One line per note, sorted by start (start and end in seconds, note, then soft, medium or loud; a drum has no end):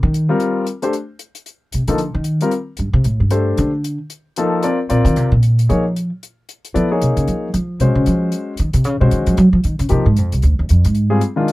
0.03 0.28 D#3 loud
0.14 closed hi-hat soft
0.29 0.64 G3 medium
0.29 0.64 C4 medium
0.29 0.64 F4 medium
0.29 0.65 A#4 medium
0.40 closed hi-hat soft
0.67 closed hi-hat soft
0.82 0.92 A3 soft
0.82 0.92 D4 soft
0.82 0.93 G4 soft
0.82 0.92 C5 medium
0.82 closed hi-hat soft
0.93 closed hi-hat soft
1.19 closed hi-hat soft
1.35 closed hi-hat soft
1.46 closed hi-hat soft
1.72 1.87 C3 medium
1.72 closed hi-hat soft
1.88 2.13 D3 medium
1.88 1.98 F3 soft
1.88 1.98 A#3 soft
1.88 1.98 D#4 soft
1.88 1.98 A4 medium
1.88 closed hi-hat soft
1.98 closed hi-hat soft
2.15 2.39 D#3 medium
2.24 closed hi-hat soft
2.41 2.51 G3 soft
2.41 2.51 C4 soft
2.41 2.51 F4 soft
2.41 2.51 A#4 medium
2.41 closed hi-hat soft
2.51 closed hi-hat soft
2.77 2.93 G2 medium
2.77 closed hi-hat soft
2.93 3.04 C3 medium
3.04 3.19 A2 medium
3.04 closed hi-hat soft
3.20 3.55 G2 medium
3.30 3.70 A3 medium
3.30 3.70 D4 soft
3.30 3.70 G4 soft
3.30 3.70 C5 medium
3.30 closed hi-hat soft
3.57 3.97 D3 loud
3.57 closed hi-hat soft
3.84 closed hi-hat soft
4.10 closed hi-hat soft
4.36 4.63 F3 medium
4.36 4.64 A#3 medium
4.36 4.63 D#4 medium
4.36 4.64 A4 medium
4.36 closed hi-hat soft
4.63 4.77 C4 medium
4.63 4.77 F4 soft
4.63 4.78 A#4 soft
4.63 4.77 D5 medium
4.63 closed hi-hat soft
4.89 5.04 A#2 medium
4.89 5.28 C4 medium
4.89 5.28 F4 medium
4.89 5.28 A#4 soft
4.89 5.29 D5 medium
4.89 closed hi-hat soft
5.05 5.16 D#3 loud
5.05 closed hi-hat soft
5.16 5.31 C3 medium
5.16 closed hi-hat soft
5.32 5.66 A#2 medium
5.43 closed hi-hat soft
5.59 closed hi-hat soft
5.69 6.09 F3 medium
5.69 5.83 A#3 medium
5.69 5.83 D#4 soft
5.69 5.83 G#4 soft
5.69 5.83 C#5 medium
5.69 closed hi-hat soft
5.96 closed hi-hat soft
6.23 closed hi-hat soft
6.49 closed hi-hat soft
6.65 closed hi-hat soft
6.74 6.99 F3 medium
6.74 6.88 B3 medium
6.74 6.88 E4 soft
6.74 6.88 A4 soft
6.74 6.89 D5 medium
6.74 closed hi-hat soft
6.90 7.47 A#3 soft
6.90 7.47 D#4 soft
6.90 7.48 G#4 soft
6.90 7.48 C#5 medium
7.02 7.16 C3 medium
7.02 closed hi-hat soft
7.17 7.27 C#3 medium
7.17 closed hi-hat soft
7.28 7.52 F3 medium
7.28 closed hi-hat soft
7.54 7.78 F3 medium
7.54 closed hi-hat soft
7.80 7.95 C3 medium
7.80 8.53 G#3 soft
7.80 8.53 C#4 soft
7.80 8.53 F#4 soft
7.80 8.53 C5 medium
7.80 closed hi-hat soft
7.95 8.06 C#3 medium
8.06 8.31 F3 medium
8.06 closed hi-hat soft
8.32 closed hi-hat soft
8.57 8.73 D#3 medium
8.57 closed hi-hat soft
8.73 8.85 C3 medium
8.73 closed hi-hat soft
8.84 9.00 C#3 medium
8.84 closed hi-hat soft
9.00 9.11 C3 medium
9.00 9.35 G#3 medium
9.00 9.36 C#4 soft
9.00 9.36 F#4 medium
9.00 9.36 C5 medium
9.11 9.26 D#3 medium
9.11 closed hi-hat soft
9.26 9.37 F3 medium
9.26 closed hi-hat soft
9.37 9.52 F#3 loud
9.37 closed hi-hat soft
9.53 9.63 F3 medium
9.64 9.79 D#3 medium
9.64 closed hi-hat soft
9.79 9.90 C#3 medium
9.79 closed hi-hat soft
9.89 10.05 C3 medium
9.89 10.04 F3 soft
9.89 10.04 A#3 soft
9.89 10.04 D#4 soft
9.89 10.04 G4 medium
9.89 closed hi-hat soft
10.06 10.18 G#2 medium
10.16 10.32 F2 medium
10.16 closed hi-hat soft
10.32 10.43 C2 medium
10.32 closed hi-hat soft
10.42 10.59 D2 medium
10.42 closed hi-hat soft
10.59 10.69 D#2 medium
10.69 10.84 F2 medium
10.69 closed hi-hat soft
10.85 11.20 G#2 medium
10.85 closed hi-hat soft
10.95 closed hi-hat soft
11.10 11.20 G3 soft
11.10 11.21 C4 soft
11.10 11.21 F4 soft
11.10 11.20 G#4 medium
11.21 closed hi-hat soft
11.36 11.52 D#3 medium
11.36 11.52 G#3 soft
11.36 11.52 D4 soft
11.36 11.52 F4 medium
11.48 closed hi-hat soft